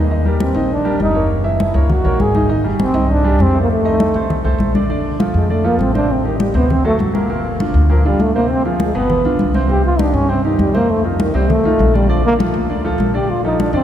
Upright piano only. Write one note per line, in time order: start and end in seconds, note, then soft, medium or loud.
0.11 0.23 D#3 medium
0.11 0.23 D#4 medium
0.11 0.23 D#5 medium
0.26 0.50 G3 medium
0.26 0.50 G4 medium
0.26 0.50 A#4 medium
0.55 0.80 D#3 medium
0.55 0.80 D#4 medium
0.55 0.80 D#5 medium
0.85 1.09 G3 medium
0.85 1.09 G4 medium
0.85 1.10 A#4 medium
1.15 1.39 A#3 medium
1.15 1.39 A#4 medium
1.15 1.39 C#5 medium
1.44 1.69 E3 medium
1.44 1.69 E4 medium
1.44 1.69 E5 medium
1.74 1.99 A#3 medium
1.74 1.99 A#4 medium
1.74 1.99 C#5 medium
2.04 2.29 A#3 medium
2.04 2.29 A#4 medium
2.04 2.29 C#5 medium
2.35 2.47 D#3 medium
2.35 2.47 D#4 medium
2.35 2.47 D#5 medium
2.49 2.62 D#3 medium
2.49 2.62 D#4 medium
2.49 2.62 D#5 medium
2.64 2.89 G3 medium
2.64 2.89 G4 medium
2.64 2.89 G#4 medium
2.94 3.19 D#3 medium
2.94 3.19 D#4 medium
2.94 3.19 D#5 medium
3.24 3.49 G3 medium
3.24 3.49 G4 medium
3.24 3.49 G#4 medium
3.54 3.79 A3 medium
3.54 3.79 A4 medium
3.54 3.79 C5 medium
3.85 4.09 D#3 medium
3.85 4.09 D#4 medium
3.85 4.10 D#5 medium
4.15 4.40 A3 medium
4.15 4.40 A4 medium
4.15 4.40 C5 medium
4.44 4.69 A3 medium
4.44 4.69 A4 medium
4.44 4.70 C5 medium
4.74 4.87 D3 medium
4.74 4.87 D4 medium
4.74 4.87 D5 medium
4.89 5.14 D3 medium
4.89 5.14 D4 medium
4.89 5.14 D5 medium
5.19 5.44 F3 medium
5.19 5.44 F4 medium
5.19 5.45 A4 medium
5.49 5.62 D3 medium
5.49 5.62 D4 medium
5.49 5.62 D5 medium
5.64 5.89 F3 medium
5.64 5.89 F4 medium
5.64 5.89 A4 medium
5.94 6.19 C3 medium
5.94 6.19 C4 medium
5.94 6.20 C5 medium
6.24 6.49 D#3 medium
6.24 6.49 D#4 medium
6.24 6.49 G4 medium
6.55 6.79 C3 medium
6.55 6.79 C4 medium
6.55 6.80 C5 medium
6.84 7.09 F#3 medium
6.84 7.09 F#4 medium
6.84 7.09 A4 medium
7.14 7.26 A#2 medium
7.14 7.27 A#3 medium
7.14 7.27 A#4 medium
7.30 7.54 A#2 medium
7.30 7.54 A#3 medium
7.30 7.55 A#4 medium
7.60 7.85 D3 medium
7.60 7.85 D4 medium
7.60 7.85 F4 medium
7.90 8.02 A#2 medium
7.90 8.02 A#3 medium
7.90 8.02 A#4 medium
8.05 8.29 D3 medium
8.05 8.30 D4 medium
8.05 8.30 F4 medium
8.35 8.60 C3 medium
8.35 8.60 C4 medium
8.35 8.60 C5 medium
8.65 8.90 F3 medium
8.65 8.90 F4 medium
8.65 8.90 G#4 medium
8.95 9.19 B2 medium
8.95 9.20 B3 medium
8.95 9.20 B4 medium
9.25 9.49 D3 medium
9.25 9.50 D4 medium
9.25 9.49 F4 medium
9.55 9.67 C3 medium
9.55 9.67 C4 medium
9.55 9.67 C5 medium
9.69 9.94 C3 medium
9.69 9.94 C4 medium
9.69 9.94 C5 medium
9.99 10.24 D#3 medium
9.99 10.24 D#4 medium
9.99 10.24 G4 medium
10.29 10.41 C3 medium
10.29 10.41 C4 medium
10.29 10.42 C5 medium
10.45 10.69 D#3 medium
10.45 10.69 D#4 medium
10.45 10.69 G4 medium
10.74 10.99 C3 medium
10.74 10.99 C4 medium
10.74 10.99 C5 medium
11.04 11.28 D#3 medium
11.04 11.29 D#4 medium
11.04 11.29 F4 medium
11.34 11.59 C3 medium
11.34 11.59 C4 medium
11.34 11.59 C5 medium
11.65 11.89 D#3 medium
11.65 11.89 D#4 medium
11.65 11.89 F4 medium
11.93 12.06 D3 medium
11.93 12.06 D4 medium
11.93 12.06 D5 medium
12.09 12.34 D3 medium
12.09 12.34 D4 medium
12.09 12.34 D5 medium
12.39 12.63 F3 medium
12.39 12.63 F4 medium
12.39 12.64 A4 medium
12.70 12.82 D3 medium
12.70 12.82 D4 medium
12.70 12.82 D5 medium
12.84 13.09 F3 medium
12.84 13.09 F4 medium
12.84 13.09 A4 medium
13.14 13.38 D3 medium
13.14 13.38 D4 medium
13.14 13.39 D5 medium
13.44 13.69 F3 medium
13.44 13.69 F4 medium
13.44 13.69 A4 medium
13.73 13.84 D3 medium
13.73 13.84 D4 medium
13.73 13.84 D5 medium